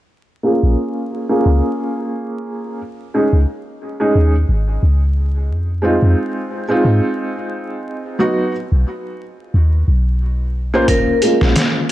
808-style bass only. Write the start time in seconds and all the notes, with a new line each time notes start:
0.63 A#1
1.46 C#2
3.33 C#2
4.15 D#2
4.49 G#1
4.83 C#2
5.50 F2
6.02 F2
6.85 G#2
8.72 B1
9.54 D#2
9.88 B1
11.41 A#1